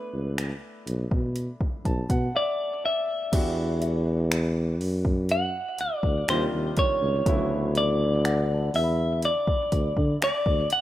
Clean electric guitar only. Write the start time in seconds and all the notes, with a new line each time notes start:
Already playing: B4
2.36 D5
2.86 E5
5.32 F#5
5.81 D5
6.30 C5
6.79 C#5
7.78 D5
8.76 E5
9.25 D5
10.24 D5
10.73 F#5